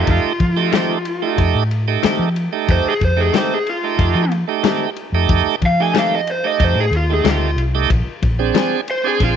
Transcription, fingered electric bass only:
0.07 F2
0.24 muted fingered electric bass stroke
0.40 F3
1.38 F2
1.55 A2
2.03 muted fingered electric bass stroke
2.19 F3
2.69 F2
2.85 muted fingered electric bass stroke
3.01 F2
3.99 F2
4.15 F3
5.12 F2
5.29 F2
5.46 muted fingered electric bass stroke
5.62 F3
6.60 F2
6.75 A2
6.91 D#2
7.25 D2
7.56 C2
7.90 A#1
8.22 A#1
9.21 A#1

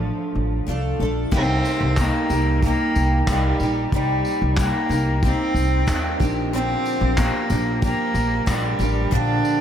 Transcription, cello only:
Already playing: F3
1.36 C4
2.00 A#3
2.63 A#3
3.30 G3
3.94 G3
4.61 A#3
5.25 C4
6.53 C4
7.19 A#3
7.83 A#3
8.49 G3
9.13 D4

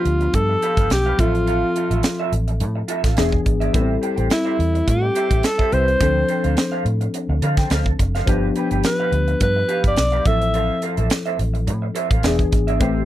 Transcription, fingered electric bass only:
0.05 D2
0.34 G2
0.77 G1
0.90 B1
1.19 A1
1.90 A1
2.32 A1
2.60 A2
3.04 A1
3.18 E1
3.46 G#1
3.74 A1
4.18 A1
4.59 E2
4.88 A2
5.31 A1
5.73 C2
6.00 D2
6.45 D2
6.85 A2
7.29 D2
7.42 D3
7.70 D2
7.99 F#1
8.27 G1
8.71 G1
9.12 D2
9.41 G2
9.84 G1
9.97 B1
10.26 A1
10.98 A1
11.39 A1
11.67 A2
12.11 A1
12.24 E1
12.53 G#1
12.81 A1

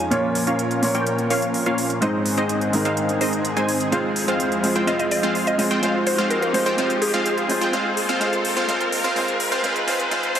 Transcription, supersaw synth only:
0.11 A#3 C#4 F4 C#5 F5
0.47 A#3 C#4 F4 C#5 F5
0.95 A#3 C#4 F4 C#5 G5
1.30 A#3 C#4 F4 C#5 F5
1.66 A#3 C#4 F4 C#5 F5
2.02 G#3 C4 D#4 C5 D#5
2.38 G#3 C4 D#4 C5 D#5
2.85 G#3 C4 D#4 C5 F5
3.21 G#3 C4 D#4 C5 D#5
3.57 G#3 C4 D#4 C5 G#5
3.92 G#3 C4 F4 C5 F5
4.28 G#3 C4 F4 C5 F5
4.76 G#3 C4 F4 C5 G5
4.87 G#3 C4 F4 C5 F5
5.23 G#3 C4 F4 C5 F5
5.71 G#3 C4 F4 C5 G5
5.83 G#3 C4 F4 C5 F5
6.18 G#3 C4 F4 C5 F5
6.66 G#3 C4 F4 C5 G5
6.78 G#3 C4 F4 C5 F5
7.14 G#3 C4 F4 C5 F5
7.61 G#3 C4 F4 C5 G5
7.73 G#3 C4 F4 C5 F5
8.09 G#3 C4 F4 C5 F5
8.21 G#3 C4 F4 C5 F5
8.57 G#3 C4 F4 C5 F5
8.69 G#3 C4 F4 C5 F5
9.04 G#3 C4 F4 C5 F5
9.16 G#3 C4 F4 C5 F5
9.52 G#3 C4 F4 C5 F5
9.64 G#3 C4 F4 C5 F5
9.88 G#3 C4 F4 C5 F5
10.11 G#3 C4 F4 C5 F5
10.35 G#3 C4 F4 C5 F5

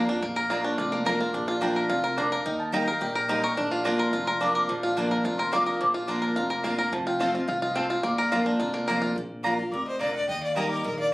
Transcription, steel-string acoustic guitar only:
Already playing: F2
0.09 D4 F4
0.23 A#2
0.50 F3 A#3 D4 F4
0.79 F2
1.06 F3 A#3 D4 F4
1.20 D4 F4
1.35 A#2
1.61 F3 A#3 D4 F4
1.90 C3
2.18 D3
2.46 D#3
2.72 G3 A#3 D#4 G4
2.87 D#4 G4
3.01 A#2
3.29 G3 A#3 D#4 G4
3.44 D#4 G4
3.58 A#2
3.85 F3 A#3 D4 F4
4.14 F2
4.40 F3 A#3 D4 F4
4.69 A#2
4.97 F3 A#3 D4 F4
5.25 F2
5.52 F3 A#3 D4 F4
5.81 A#2
6.08 F3 A#3 D4 F4
6.37 F2
6.64 F3 A#3 D4 F4
6.79 D4 F4
6.93 F2
7.20 F3 A3 C4 F4
7.34 C4 F4
7.48 G2
7.75 A2
8.04 A#2
8.32 F3 A#3 D4 F4
8.60 F2
8.89 F3 A#3 D4 F4
9.18 A#2
9.45 F3 A#3 D4 F4
9.59 D4 F4
9.74 C3
10.01 D3
10.29 D#3
10.56 G3 A#3 D#4 G4
10.84 D#3

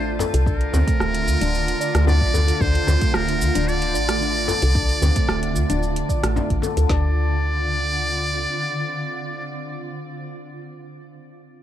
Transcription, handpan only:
Already playing: D4
0.20 A4
0.34 A4
0.47 D4
0.73 C4
0.88 A3
1.00 A3
1.41 D4
1.81 D5
1.95 A3
2.07 D4
2.34 A4
2.48 A4
2.61 D4
2.87 C4
3.02 A3
3.15 A3
3.55 D4
3.94 D5
4.09 A3
4.21 D4
4.48 A4
4.62 A4
4.75 D4
5.02 C4
5.16 A3
5.29 A3
5.70 D4
6.09 D5
6.24 A3
6.36 D4
6.63 A4
6.77 A4
6.90 D4

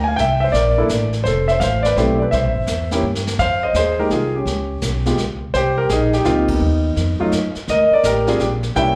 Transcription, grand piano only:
Already playing: D3 A#3 F4 G4
0.04 G#5
0.08 F5
0.16 E5 G5
0.40 C5 E5
0.52 A#4 D5
0.78 A#3 D4 E4 A4
1.24 A4 C5
1.48 C5 E5
1.60 C5 F5
1.83 B4 D5
1.97 A3 C4 E4 G4 A4 C5
2.19 B4 D5
2.31 C5 E5
2.91 A#3 C#4 E4 G4
3.39 C5 F5
3.63 C5 D#5
3.76 G#4 C5
3.99 G#3 A#3 D#4 G4 A#4
4.12 F4 G#4
4.35 C#4 G4
5.06 G#3 B3 F4 G4
5.54 G4 C5
5.78 G4 A#4
5.90 D#4 G#4
6.14 D#4 G4
6.25 A#3 C4 D#4 F4 G4
6.49 B3 D#4
7.20 F#3 A3 D#4 F4
7.70 A#4 D#5
7.93 A#4 D5
8.05 G4 A#4
8.27 G3 C4 D4 F4 G#4
8.40 D4 G4
8.76 G3 A#3 C#4 E4 E5 G5

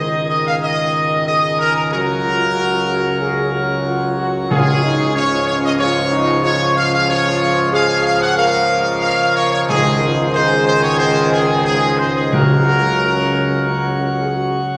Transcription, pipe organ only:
Already playing: D#3 G#3 D#4 G#4
1.92 C#3 F#3 A#4 C#5
4.50 C#3 G#3 F4 C#5
9.69 D#3 G#3 D#4 C5
12.32 C#3 F#3 F#4 C#5

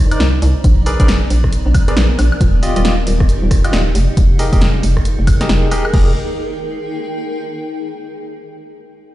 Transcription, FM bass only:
0.20 C2
0.42 C2
0.64 A#1
1.00 A#1
1.30 A#1
1.66 A#1
1.97 A#1
2.19 A#1
2.41 D#1
2.76 D#1
3.07 D#1
3.42 D#1
3.73 D#1
3.95 F1
4.17 F1
4.53 F1
4.83 F1
5.19 F1
5.50 F1
5.71 D#1
5.94 F1

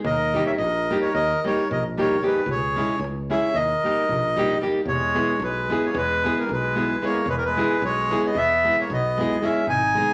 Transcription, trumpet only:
0.05 A#4
0.46 C#5
0.61 A#4
1.01 A#4
1.11 A#4
1.42 A#4
1.69 A#4
1.99 A#4
2.23 G#4
2.50 G#4
3.31 C#5
3.58 A#4
4.88 G#3
5.43 G#3
5.86 A#3
5.96 G#3
6.39 G3
6.51 G#3
7.05 A#3
7.28 G#3
7.38 G3
7.47 G#3
7.85 G#3
8.25 B3
8.37 B3
8.79 A#3
8.91 B3
9.44 C#4
9.67 D#4

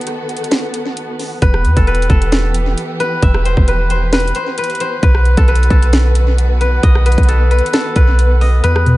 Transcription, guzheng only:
1.42 B4
1.77 A4
1.87 B4
2.10 A4
3.00 B4
3.23 E5
3.45 C5
3.68 B4
3.90 C5
4.13 B4
4.36 C5
4.58 B4
4.80 C5
5.03 B4
5.38 A4
5.48 B4
5.71 A4
6.61 B4
6.83 D#5
7.06 B4
7.28 A4
7.51 B4
7.73 A4
7.96 B4
8.41 D#5
8.64 B4

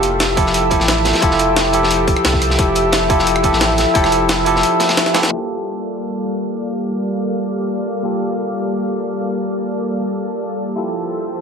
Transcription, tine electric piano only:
Already playing: E4 F4 G4 A4
0.36 F3 E4 G4 A4
0.70 F3 E4 G4 A4
1.21 E4 F4 G4 A4
1.72 F3 E4 G4 A4
2.58 F3 E4 G4 A4
3.09 E4 F4 G4 A4
3.43 F3 E4 G4 A4
3.94 F3 E4 G4 A4
4.45 F3 E4 G4 A4
5.14 E4 F4 G4 A4
5.30 A#3 F4 G4 A4
8.03 A#3 F4 G4 A4
10.76 E4 F4 G4 A4

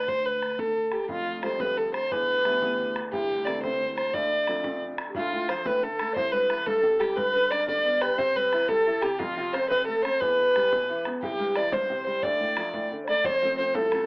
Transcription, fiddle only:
0.08 C5
0.26 B4
0.59 A4
0.93 G4
1.10 F4
1.45 C5
1.61 B4
1.78 A4
1.94 C5
2.11 B4
3.12 G4
3.45 D5
3.63 C5
3.97 C5
4.14 D5
5.16 F4
5.49 C5
5.67 B4
5.83 A4
6.16 C5
6.32 B4
6.66 A4
7.00 G4
7.16 B4
7.50 D5
7.68 D5
8.01 B4
8.18 C5
8.36 B4
8.68 A4
9.02 G4
9.19 F4
9.53 C5
9.69 B4
9.86 A4
10.02 C5
10.20 B4
11.21 G4
11.57 D5
11.73 C5
12.06 C5
12.23 D5
13.09 D5
13.25 C5
13.58 C5
13.75 A4

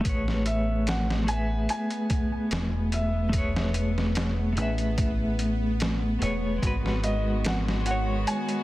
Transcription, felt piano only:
0.46 E5
0.88 F#5
1.28 G#5
1.70 G#5
2.94 E5
7.04 D#5
7.46 F#5
7.86 F#5
8.27 G#5

